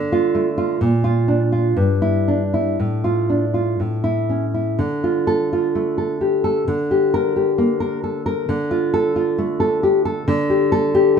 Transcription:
0.00 0.76 D3 medium
0.12 0.48 F4 medium
0.35 0.79 A3 medium
0.58 0.80 F4 medium
0.81 1.72 A#2 medium
1.04 1.41 F4 medium
1.28 1.75 D4 medium
1.52 1.76 F4 medium
1.76 2.75 G2 medium
2.02 2.42 E4 medium
2.28 2.78 D4 medium
2.54 2.78 E4 medium
2.80 3.77 A2 medium
3.04 3.44 F4 medium
3.30 3.79 D4 medium
3.54 3.79 F4 medium
3.80 4.77 A2 medium
4.04 4.45 E4 medium
4.29 4.80 C#4 soft
4.54 4.79 E4 medium
4.79 6.63 D3 medium
5.04 5.51 F4 medium
5.27 5.66 A4 medium
5.53 6.20 F4 medium
5.75 6.67 A3 medium
5.98 6.43 A4 medium
6.21 6.67 G4 medium
6.44 6.67 A4 medium
6.68 8.45 D3 medium
6.91 7.35 G4 medium
7.14 7.50 A#4 medium
7.36 8.49 G4 medium
7.58 8.48 A#3 medium
7.80 8.03 A#4 medium
8.04 8.26 A4 medium
8.26 8.48 A#4 medium
8.49 10.23 D3 medium
8.71 9.15 F4 medium
8.94 9.29 A4 loud
9.16 10.27 F4 medium
9.38 10.27 A3 medium
9.60 9.83 A4 medium
9.83 10.05 G4 medium
10.05 10.27 A4 medium
10.28 11.20 D3 loud
10.50 10.93 G4 medium
10.72 11.07 A4 loud
10.95 11.20 G4 medium

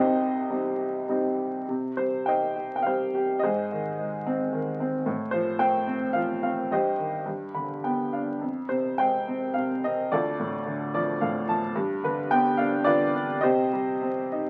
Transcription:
0.00 1.66 C2 medium
0.00 1.65 C3 medium
0.00 0.49 D#4 medium
0.00 1.07 G4 medium
0.00 1.06 C5 medium
0.00 1.04 D#5 medium
0.50 1.07 G3 soft
0.50 1.08 C4 soft
0.50 1.08 D#4 soft
1.09 1.67 G3 soft
1.09 1.67 C4 soft
1.09 1.68 D#4 soft
1.68 3.38 C3 soft
1.97 2.85 G3 soft
1.97 2.27 C5 medium
2.26 3.39 D#4 soft
2.26 2.85 C5 soft
2.26 3.10 D#5 soft
2.26 2.74 G5 medium
2.56 3.13 G4 soft
2.76 2.84 G5 medium
2.82 3.39 C5 soft
2.82 3.43 F5 medium
2.87 3.41 G3 soft
3.15 3.42 G4 soft
3.39 4.50 C5 medium
3.39 4.48 D#5 medium
3.43 5.04 G#2 medium
3.43 4.50 G#4 soft
3.72 4.51 D#3 soft
3.99 5.04 G#3 soft
4.26 4.79 C4 medium
4.53 5.05 D#3 medium
4.80 5.06 C4 medium
5.06 6.66 A2 medium
5.31 6.14 F3 soft
5.31 5.58 C5 medium
5.59 6.67 A3 soft
5.59 6.39 C5 medium
5.59 6.16 G5 medium
5.87 6.42 C4 medium
6.13 6.69 F3 medium
6.13 6.40 F5 medium
6.43 6.70 C4 soft
6.43 6.72 F5 medium
6.71 7.24 G2 medium
6.71 7.24 G4 medium
6.71 7.24 C5 medium
6.71 7.23 D#5 medium
6.98 7.25 D#3 soft
7.26 8.38 G2 soft
7.54 8.38 D3 soft
7.54 7.82 B5 soft
7.84 8.40 B3 soft
7.84 8.11 G5 soft
8.13 8.40 D4 soft
8.13 8.39 F5 soft
8.41 10.08 F2 soft
8.69 9.54 C3 soft
8.69 8.98 C5 medium
8.98 10.08 G#3 soft
8.98 9.80 C5 medium
8.98 9.52 G5 medium
9.28 9.83 C4 soft
9.54 10.10 C3 soft
9.54 9.84 F5 medium
9.84 10.11 C4 soft
9.84 10.13 D#5 medium
10.12 11.72 D2 medium
10.12 11.17 F4 soft
10.12 11.17 A4 medium
10.12 10.93 D5 medium
10.39 11.20 A2 soft
10.66 11.72 D3 soft
10.94 11.46 F3 medium
10.94 11.19 D5 medium
11.21 11.74 A2 medium
11.21 11.46 F5 medium
11.48 11.75 F3 soft
11.48 11.74 A5 medium
11.76 13.38 G2 medium
12.04 12.85 D3 medium
12.04 12.32 B4 medium
12.31 13.39 B3 medium
12.31 12.59 G5 loud
12.57 13.13 D4 medium
12.57 12.83 F5 medium
12.84 13.41 D3 medium
12.84 13.38 F4 medium
12.84 13.38 B4 medium
12.84 13.37 D5 loud
13.14 13.42 D4 medium
13.41 14.50 C3 medium
13.41 14.50 G4 medium
13.41 14.50 C5 medium
13.41 14.50 D#5 medium
13.73 14.50 G3 medium
14.02 14.50 C4 medium
14.32 14.50 D#4 medium

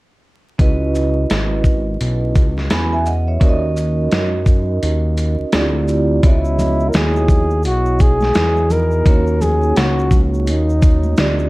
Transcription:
0.58 1.26 C#2 medium
0.58 3.37 C#4 medium
0.58 3.37 E4 medium
0.58 3.38 F#4 medium
0.58 3.38 B4 medium
0.58 2.67 D#5 medium
0.58 kick medium
0.58 closed hi-hat medium
0.95 shaker soft
1.30 1.97 G#1 medium
1.30 snare medium
1.30 closed hi-hat medium
1.64 kick medium
1.64 shaker soft
2.01 2.34 B1 loud
2.01 closed hi-hat medium
2.35 2.69 C#2 medium
2.35 kick medium
2.35 closed hi-hat soft
2.35 shaker soft
2.58 snare soft
2.70 3.38 E2 medium
2.70 2.91 G#5 soft
2.70 2.91 B5 medium
2.70 snare loud
2.70 closed hi-hat medium
2.93 3.06 E5 soft
2.93 3.06 G#5 medium
3.06 3.27 D#5 medium
3.06 3.27 F#5 medium
3.06 shaker soft
3.28 3.61 C#5 soft
3.28 3.61 E5 medium
3.40 4.08 D#2 medium
3.40 5.48 C#4 medium
3.40 5.49 D#4 medium
3.40 5.49 F#4 medium
3.40 5.49 A#4 medium
3.40 3.50 D5 medium
3.40 kick loud
3.40 closed hi-hat medium
3.49 5.53 D#5 medium
3.77 shaker medium
4.12 4.79 F#2 medium
4.12 snare medium
4.12 closed hi-hat medium
4.46 kick medium
4.46 shaker soft
4.83 5.37 D#2 medium
4.83 closed hi-hat medium
5.18 closed hi-hat soft
5.18 shaker soft
5.40 5.45 D2 soft
5.52 6.20 D2 loud
5.52 6.24 C4 medium
5.52 6.23 E4 medium
5.52 6.24 F4 medium
5.52 6.24 G4 medium
5.52 6.24 D5 medium
5.52 snare loud
5.52 closed hi-hat medium
5.88 shaker soft
6.23 6.91 C#2 loud
6.23 8.66 B3 medium
6.23 8.67 E4 medium
6.23 6.90 E4 medium
6.23 8.67 F#4 medium
6.23 8.67 C#5 medium
6.23 8.67 D#5 medium
6.23 kick loud
6.23 closed hi-hat medium
6.23 shaker medium
6.45 shaker soft
6.59 high conga soft
6.59 low conga medium
6.59 shaker soft
6.59 shaker medium
6.80 shaker soft
6.89 6.97 A#4 medium
6.93 7.67 D#2 loud
6.93 7.65 G#4 medium
6.93 snare loud
6.93 closed hi-hat medium
6.93 shaker medium
7.16 shaker soft
7.28 kick medium
7.28 low conga medium
7.28 shaker soft
7.28 shaker medium
7.50 shaker soft
7.63 8.32 B1 loud
7.63 8.02 F#4 loud
7.63 closed hi-hat medium
7.63 shaker medium
7.86 shaker soft
7.99 kick medium
7.99 closed hi-hat soft
7.99 shaker soft
8.00 8.73 G#4 loud
8.00 shaker soft
8.20 snare soft
8.20 high conga soft
8.20 shaker soft
8.34 9.03 E2 medium
8.34 snare loud
8.34 closed hi-hat medium
8.34 shaker medium
8.57 shaker soft
8.70 9.06 B3 soft
8.70 9.05 D#4 soft
8.70 9.06 E4 soft
8.70 9.06 F#4 soft
8.70 9.43 A#4 loud
8.70 9.07 D#5 medium
8.70 low conga medium
8.70 shaker soft
8.91 shaker soft
9.05 9.73 D#2 loud
9.05 11.13 A#3 medium
9.05 11.14 C#4 medium
9.05 11.14 D#4 medium
9.05 11.14 F#4 medium
9.05 11.15 C#5 medium
9.05 kick loud
9.05 closed hi-hat medium
9.05 shaker medium
9.27 shaker soft
9.41 9.78 G#4 loud
9.41 high conga soft
9.41 low conga medium
9.41 shaker soft
9.41 shaker medium
9.63 shaker soft
9.76 10.50 C#2 medium
9.76 10.22 F#4 medium
9.76 snare loud
9.76 closed hi-hat medium
9.76 shaker medium
9.99 shaker soft
10.11 kick medium
10.11 low conga medium
10.11 shaker medium
10.11 shaker soft
10.34 shaker soft
10.47 11.15 D#2 loud
10.47 11.49 D#4 medium
10.47 closed hi-hat medium
10.47 shaker medium
10.69 shaker soft
10.82 kick medium
10.82 closed hi-hat medium
10.82 shaker soft
10.82 shaker medium
11.03 high conga medium
11.03 shaker soft
11.17 11.49 D2 medium
11.17 11.49 C4 medium
11.17 11.49 F4 medium
11.17 11.49 G4 medium
11.17 11.49 D5 medium
11.17 snare loud
11.17 closed hi-hat medium
11.17 shaker medium
11.39 shaker soft

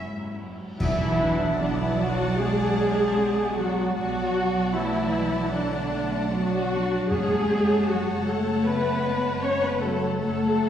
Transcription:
0.00 0.59 F#1 medium
0.00 0.83 F#2 medium
0.00 0.36 G#2 medium
0.00 1.85 F#3 soft
0.00 0.83 A#3 soft
0.00 0.58 C#4 medium
0.00 0.56 E4 soft
0.00 0.59 F#4 soft
0.00 0.83 A#4 soft
0.00 0.38 E5 medium
0.00 0.39 F#5 soft
0.00 0.17 A#5 medium
0.19 0.83 A#5 soft
0.39 0.79 F#2 medium
0.39 4.30 F#5 soft
0.60 1.33 F#4 soft
0.79 3.93 B1 medium
0.79 1.95 B2 loud
0.79 3.97 B2 medium
0.79 1.55 E3 loud
0.79 1.55 E3 medium
0.79 1.21 B3 medium
0.79 1.55 E4 loud
0.79 3.93 D5 medium
0.79 1.56 E5 loud
0.79 3.93 F#5 medium
0.79 3.93 A5 medium
0.79 concert bass drum loud
0.79 crash medium
1.08 4.98 B3 medium
1.20 1.61 D4 medium
1.34 2.13 F#4 medium
1.59 1.79 D3 medium
1.59 2.41 B3 medium
1.59 1.79 D4 medium
1.59 1.79 D5 medium
1.79 1.99 E3 medium
1.79 1.99 E4 medium
1.79 1.99 E5 medium
1.87 2.38 F#3 medium
1.98 2.38 F#3 medium
1.98 2.38 F#4 loud
1.98 2.39 F#5 medium
2.38 3.44 F#3 medium
2.38 3.57 G#3 medium
2.38 3.58 G#3 loud
2.38 3.19 C#4 medium
2.38 3.57 G#4 loud
2.38 3.55 G#5 medium
2.92 3.70 F#4 medium
3.18 4.75 B3 medium
3.45 5.01 F#3 medium
3.56 3.95 F#3 medium
3.56 3.95 F#4 medium
3.56 3.94 F#5 medium
3.71 4.49 F#4 medium
3.95 7.06 B1 medium
3.95 7.14 B2 medium
3.95 4.73 F#3 medium
3.95 4.73 F#4 loud
3.95 7.06 D5 medium
3.95 4.73 F#5 medium
3.95 7.06 F#5 medium
3.95 7.06 A5 medium
4.75 5.54 E3 medium
4.75 5.16 A3 medium
4.75 5.54 E4 loud
4.75 5.54 E5 medium
5.02 5.52 F#3 medium
5.14 5.55 G#3 medium
5.27 6.05 F#4 medium
5.53 6.32 D3 medium
5.53 6.31 D3 medium
5.53 5.93 F#3 medium
5.53 6.58 F#3 medium
5.53 6.32 D4 medium
5.53 6.33 D5 medium
5.93 6.35 A3 medium
6.32 7.09 F#3 medium
6.32 7.10 F#3 medium
6.32 6.74 B3 medium
6.32 7.09 F#4 loud
6.32 6.86 F#5 medium
6.72 7.12 D4 medium
6.84 7.62 F#4 medium
7.09 10.16 F#1 medium
7.09 10.20 F#2 medium
7.09 8.23 F#2 medium
7.09 7.87 G#3 loud
7.09 7.88 G#3 medium
7.09 7.52 C#4 medium
7.09 7.86 G#4 loud
7.09 10.17 C#5 medium
7.09 10.17 F#5 medium
7.09 7.86 G#5 loud
7.09 10.16 A5 medium
7.50 8.38 B3 medium
7.87 8.26 F#3 medium
7.87 8.26 F#4 medium
7.87 8.26 F#5 medium
8.14 8.66 C#3 medium
8.26 8.65 A3 medium
8.26 8.66 A3 medium
8.26 8.65 A4 medium
8.26 8.65 A5 medium
8.40 9.17 F#4 medium
8.65 9.68 C#3 medium
8.65 9.06 A3 medium
8.65 9.42 B3 medium
8.65 9.43 B3 medium
8.65 9.43 B4 medium
8.65 9.43 B5 medium
9.05 10.20 G#3 medium
9.18 9.93 F#4 medium
9.43 9.62 C#4 medium
9.43 9.62 C#5 loud
9.43 9.62 C#6 medium
9.62 9.82 B3 medium
9.62 9.82 B4 medium
9.62 9.81 B5 medium
9.70 10.69 C#3 soft
9.81 10.21 F#3 medium
9.81 10.19 A3 medium
9.81 10.19 A4 medium
9.81 10.17 A5 medium
9.94 10.69 F#4 medium
10.18 10.69 F#1 medium
10.18 10.69 F#2 medium
10.18 10.58 F#3 medium
10.18 10.69 A3 medium
10.18 10.69 A4 medium
10.18 10.69 C#5 medium
10.18 10.69 F#5 medium
10.18 10.69 A5 loud
10.18 10.69 A5 medium
10.59 10.69 A3 medium

